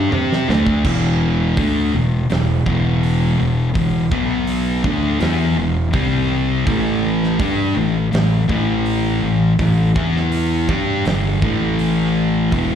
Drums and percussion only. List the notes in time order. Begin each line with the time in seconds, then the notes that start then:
0.12 mid tom
0.33 snare
0.50 snare
0.67 kick
0.85 kick, crash
1.57 kick, open hi-hat
2.30 snare, open hi-hat
2.66 kick
3.03 open hi-hat
3.75 kick, open hi-hat
4.12 kick
4.47 open hi-hat
4.84 kick
5.20 snare, open hi-hat
5.93 kick, open hi-hat
6.67 kick, open hi-hat
7.24 snare
7.39 kick, open hi-hat
8.13 snare, open hi-hat
8.49 kick
8.86 open hi-hat
9.59 kick, open hi-hat
9.96 kick
10.16 snare
10.32 open hi-hat
10.69 kick
11.05 snare, open hi-hat
11.42 kick
11.79 open hi-hat
12.52 kick, open hi-hat